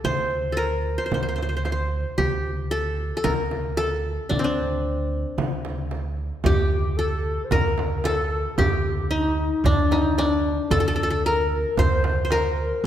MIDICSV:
0, 0, Header, 1, 6, 480
1, 0, Start_track
1, 0, Tempo, 533333
1, 40, Time_signature, 4, 2, 24, 8
1, 11578, End_track
2, 0, Start_track
2, 0, Title_t, "Clarinet"
2, 0, Program_c, 0, 71
2, 5794, Note_on_c, 0, 67, 66
2, 6271, Note_on_c, 0, 69, 69
2, 6284, Note_off_c, 0, 67, 0
2, 6699, Note_on_c, 0, 72, 51
2, 6712, Note_off_c, 0, 69, 0
2, 6751, Note_on_c, 0, 70, 75
2, 6765, Note_off_c, 0, 72, 0
2, 7237, Note_on_c, 0, 69, 65
2, 7251, Note_off_c, 0, 70, 0
2, 7463, Note_off_c, 0, 69, 0
2, 7469, Note_on_c, 0, 69, 69
2, 7709, Note_on_c, 0, 67, 69
2, 7723, Note_off_c, 0, 69, 0
2, 8188, Note_off_c, 0, 67, 0
2, 8194, Note_on_c, 0, 63, 62
2, 8262, Note_on_c, 0, 62, 56
2, 8275, Note_off_c, 0, 63, 0
2, 8327, Note_on_c, 0, 63, 67
2, 8341, Note_off_c, 0, 62, 0
2, 8673, Note_on_c, 0, 62, 74
2, 8686, Note_off_c, 0, 63, 0
2, 9149, Note_off_c, 0, 62, 0
2, 9154, Note_on_c, 0, 62, 65
2, 9492, Note_off_c, 0, 62, 0
2, 9633, Note_on_c, 0, 69, 75
2, 9860, Note_off_c, 0, 69, 0
2, 9878, Note_on_c, 0, 69, 79
2, 10110, Note_on_c, 0, 70, 82
2, 10123, Note_off_c, 0, 69, 0
2, 10596, Note_on_c, 0, 72, 90
2, 10609, Note_off_c, 0, 70, 0
2, 10829, Note_off_c, 0, 72, 0
2, 10835, Note_on_c, 0, 72, 76
2, 11075, Note_on_c, 0, 70, 77
2, 11088, Note_off_c, 0, 72, 0
2, 11547, Note_on_c, 0, 69, 71
2, 11561, Note_off_c, 0, 70, 0
2, 11578, Note_off_c, 0, 69, 0
2, 11578, End_track
3, 0, Start_track
3, 0, Title_t, "Qanun"
3, 0, Program_c, 1, 107
3, 0, Note_on_c, 1, 67, 84
3, 0, Note_on_c, 1, 69, 74
3, 42, Note_on_c, 1, 72, 89
3, 202, Note_off_c, 1, 67, 0
3, 467, Note_off_c, 1, 69, 0
3, 471, Note_on_c, 1, 69, 51
3, 512, Note_on_c, 1, 70, 83
3, 566, Note_off_c, 1, 69, 0
3, 878, Note_off_c, 1, 72, 0
3, 882, Note_on_c, 1, 72, 67
3, 949, Note_off_c, 1, 72, 0
3, 952, Note_on_c, 1, 72, 49
3, 1023, Note_off_c, 1, 72, 0
3, 1027, Note_on_c, 1, 72, 55
3, 1100, Note_off_c, 1, 72, 0
3, 1104, Note_on_c, 1, 72, 43
3, 1154, Note_off_c, 1, 72, 0
3, 1157, Note_on_c, 1, 72, 47
3, 1218, Note_off_c, 1, 72, 0
3, 1221, Note_on_c, 1, 72, 43
3, 1279, Note_off_c, 1, 72, 0
3, 1282, Note_on_c, 1, 72, 46
3, 1336, Note_off_c, 1, 72, 0
3, 1340, Note_on_c, 1, 72, 41
3, 1406, Note_off_c, 1, 72, 0
3, 1409, Note_on_c, 1, 72, 47
3, 1484, Note_off_c, 1, 72, 0
3, 1488, Note_on_c, 1, 72, 46
3, 1530, Note_off_c, 1, 70, 0
3, 1545, Note_off_c, 1, 72, 0
3, 1549, Note_on_c, 1, 72, 56
3, 1960, Note_on_c, 1, 67, 85
3, 2440, Note_on_c, 1, 69, 87
3, 2499, Note_off_c, 1, 72, 0
3, 2848, Note_off_c, 1, 69, 0
3, 2851, Note_on_c, 1, 69, 71
3, 2915, Note_on_c, 1, 70, 92
3, 2969, Note_off_c, 1, 69, 0
3, 3090, Note_off_c, 1, 67, 0
3, 3395, Note_on_c, 1, 69, 95
3, 3449, Note_off_c, 1, 70, 0
3, 3865, Note_on_c, 1, 62, 75
3, 3952, Note_on_c, 1, 60, 63
3, 3995, Note_off_c, 1, 62, 0
3, 3998, Note_on_c, 1, 62, 71
3, 4449, Note_off_c, 1, 69, 0
3, 5342, Note_off_c, 1, 62, 0
3, 5392, Note_off_c, 1, 60, 0
3, 5814, Note_on_c, 1, 67, 87
3, 6288, Note_on_c, 1, 69, 76
3, 6767, Note_on_c, 1, 70, 88
3, 6821, Note_off_c, 1, 69, 0
3, 6944, Note_off_c, 1, 67, 0
3, 7246, Note_on_c, 1, 69, 92
3, 7300, Note_off_c, 1, 70, 0
3, 7726, Note_on_c, 1, 67, 92
3, 8195, Note_on_c, 1, 63, 77
3, 8300, Note_off_c, 1, 69, 0
3, 8690, Note_on_c, 1, 62, 91
3, 8744, Note_off_c, 1, 63, 0
3, 8856, Note_off_c, 1, 67, 0
3, 8926, Note_on_c, 1, 63, 74
3, 8980, Note_off_c, 1, 62, 0
3, 9166, Note_on_c, 1, 62, 90
3, 9220, Note_off_c, 1, 63, 0
3, 9641, Note_on_c, 1, 69, 101
3, 9717, Note_off_c, 1, 69, 0
3, 9721, Note_on_c, 1, 69, 72
3, 9786, Note_off_c, 1, 69, 0
3, 9790, Note_on_c, 1, 69, 82
3, 9858, Note_off_c, 1, 69, 0
3, 9861, Note_on_c, 1, 69, 66
3, 9925, Note_off_c, 1, 69, 0
3, 9929, Note_on_c, 1, 69, 75
3, 9991, Note_off_c, 1, 69, 0
3, 9994, Note_on_c, 1, 69, 69
3, 10134, Note_on_c, 1, 70, 89
3, 10188, Note_off_c, 1, 69, 0
3, 10510, Note_off_c, 1, 62, 0
3, 10610, Note_on_c, 1, 72, 95
3, 11019, Note_off_c, 1, 72, 0
3, 11022, Note_on_c, 1, 72, 64
3, 11081, Note_off_c, 1, 70, 0
3, 11085, Note_on_c, 1, 70, 92
3, 11578, Note_off_c, 1, 70, 0
3, 11578, Note_off_c, 1, 72, 0
3, 11578, End_track
4, 0, Start_track
4, 0, Title_t, "Upright bass"
4, 0, Program_c, 2, 32
4, 37, Note_on_c, 2, 38, 83
4, 863, Note_off_c, 2, 38, 0
4, 1004, Note_on_c, 2, 38, 81
4, 1828, Note_off_c, 2, 38, 0
4, 1962, Note_on_c, 2, 38, 82
4, 2786, Note_off_c, 2, 38, 0
4, 2923, Note_on_c, 2, 38, 82
4, 3747, Note_off_c, 2, 38, 0
4, 3880, Note_on_c, 2, 38, 85
4, 4706, Note_off_c, 2, 38, 0
4, 4839, Note_on_c, 2, 38, 77
4, 5665, Note_off_c, 2, 38, 0
4, 5799, Note_on_c, 2, 38, 85
4, 6624, Note_off_c, 2, 38, 0
4, 6758, Note_on_c, 2, 38, 87
4, 7583, Note_off_c, 2, 38, 0
4, 7719, Note_on_c, 2, 38, 89
4, 8543, Note_off_c, 2, 38, 0
4, 8674, Note_on_c, 2, 38, 89
4, 9500, Note_off_c, 2, 38, 0
4, 9634, Note_on_c, 2, 38, 87
4, 10459, Note_off_c, 2, 38, 0
4, 10596, Note_on_c, 2, 38, 88
4, 11420, Note_off_c, 2, 38, 0
4, 11578, End_track
5, 0, Start_track
5, 0, Title_t, "Darbuka"
5, 5807, Note_on_c, 9, 64, 83
5, 5897, Note_off_c, 9, 64, 0
5, 5938, Note_on_c, 9, 62, 25
5, 6028, Note_off_c, 9, 62, 0
5, 6295, Note_on_c, 9, 62, 25
5, 6385, Note_off_c, 9, 62, 0
5, 6770, Note_on_c, 9, 64, 82
5, 6860, Note_off_c, 9, 64, 0
5, 7012, Note_on_c, 9, 63, 59
5, 7102, Note_off_c, 9, 63, 0
5, 7135, Note_on_c, 9, 62, 24
5, 7225, Note_off_c, 9, 62, 0
5, 7256, Note_on_c, 9, 63, 54
5, 7346, Note_off_c, 9, 63, 0
5, 7493, Note_on_c, 9, 62, 25
5, 7583, Note_off_c, 9, 62, 0
5, 7731, Note_on_c, 9, 64, 91
5, 7821, Note_off_c, 9, 64, 0
5, 7853, Note_on_c, 9, 62, 25
5, 7943, Note_off_c, 9, 62, 0
5, 8209, Note_on_c, 9, 62, 25
5, 8299, Note_off_c, 9, 62, 0
5, 8686, Note_on_c, 9, 64, 88
5, 8776, Note_off_c, 9, 64, 0
5, 8932, Note_on_c, 9, 63, 66
5, 9022, Note_off_c, 9, 63, 0
5, 9049, Note_on_c, 9, 62, 23
5, 9139, Note_off_c, 9, 62, 0
5, 9169, Note_on_c, 9, 63, 65
5, 9259, Note_off_c, 9, 63, 0
5, 9408, Note_on_c, 9, 62, 22
5, 9498, Note_off_c, 9, 62, 0
5, 9642, Note_on_c, 9, 64, 87
5, 9732, Note_off_c, 9, 64, 0
5, 9764, Note_on_c, 9, 62, 23
5, 9854, Note_off_c, 9, 62, 0
5, 10121, Note_on_c, 9, 62, 24
5, 10211, Note_off_c, 9, 62, 0
5, 10596, Note_on_c, 9, 64, 83
5, 10686, Note_off_c, 9, 64, 0
5, 10837, Note_on_c, 9, 63, 67
5, 10927, Note_off_c, 9, 63, 0
5, 10960, Note_on_c, 9, 62, 25
5, 11050, Note_off_c, 9, 62, 0
5, 11075, Note_on_c, 9, 63, 70
5, 11165, Note_off_c, 9, 63, 0
5, 11324, Note_on_c, 9, 62, 24
5, 11414, Note_off_c, 9, 62, 0
5, 11578, End_track
6, 0, Start_track
6, 0, Title_t, "Frame drum"
6, 42, Note_on_c, 9, 64, 73
6, 132, Note_off_c, 9, 64, 0
6, 1004, Note_on_c, 9, 64, 78
6, 1094, Note_off_c, 9, 64, 0
6, 1246, Note_on_c, 9, 64, 50
6, 1336, Note_off_c, 9, 64, 0
6, 1485, Note_on_c, 9, 64, 57
6, 1575, Note_off_c, 9, 64, 0
6, 1961, Note_on_c, 9, 64, 74
6, 2051, Note_off_c, 9, 64, 0
6, 2918, Note_on_c, 9, 64, 86
6, 3008, Note_off_c, 9, 64, 0
6, 3162, Note_on_c, 9, 64, 58
6, 3252, Note_off_c, 9, 64, 0
6, 3396, Note_on_c, 9, 64, 57
6, 3486, Note_off_c, 9, 64, 0
6, 3878, Note_on_c, 9, 64, 72
6, 3968, Note_off_c, 9, 64, 0
6, 4844, Note_on_c, 9, 64, 88
6, 4934, Note_off_c, 9, 64, 0
6, 5083, Note_on_c, 9, 64, 59
6, 5173, Note_off_c, 9, 64, 0
6, 5321, Note_on_c, 9, 64, 59
6, 5411, Note_off_c, 9, 64, 0
6, 5794, Note_on_c, 9, 64, 87
6, 5884, Note_off_c, 9, 64, 0
6, 6758, Note_on_c, 9, 64, 85
6, 6848, Note_off_c, 9, 64, 0
6, 6999, Note_on_c, 9, 64, 62
6, 7089, Note_off_c, 9, 64, 0
6, 7236, Note_on_c, 9, 64, 70
6, 7326, Note_off_c, 9, 64, 0
6, 7720, Note_on_c, 9, 64, 87
6, 7810, Note_off_c, 9, 64, 0
6, 8681, Note_on_c, 9, 64, 80
6, 8771, Note_off_c, 9, 64, 0
6, 8922, Note_on_c, 9, 64, 60
6, 9012, Note_off_c, 9, 64, 0
6, 9162, Note_on_c, 9, 64, 65
6, 9252, Note_off_c, 9, 64, 0
6, 9639, Note_on_c, 9, 64, 75
6, 9729, Note_off_c, 9, 64, 0
6, 10597, Note_on_c, 9, 64, 81
6, 10687, Note_off_c, 9, 64, 0
6, 10836, Note_on_c, 9, 64, 64
6, 10926, Note_off_c, 9, 64, 0
6, 11076, Note_on_c, 9, 64, 69
6, 11166, Note_off_c, 9, 64, 0
6, 11578, End_track
0, 0, End_of_file